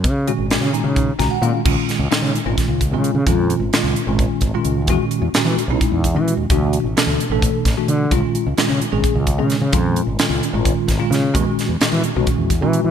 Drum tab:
CC |-------|x------|-------|-------|
HH |xxxxxxx|-xxxxxx|xxxxxxx|xxxxxxx|
SD |--o--o-|-oo-o--|--o----|--o----|
BD |o---oo-|o---oo-|o---oo-|o---oo-|

CC |-------|-------|-------|-------|
HH |xxxxxxx|xxxxxxx|xxxxxxx|xxxxxxx|
SD |--o--o-|--o---o|--o--oo|-oo----|
BD |o---oo-|o---oo-|o---oo-|o---oo-|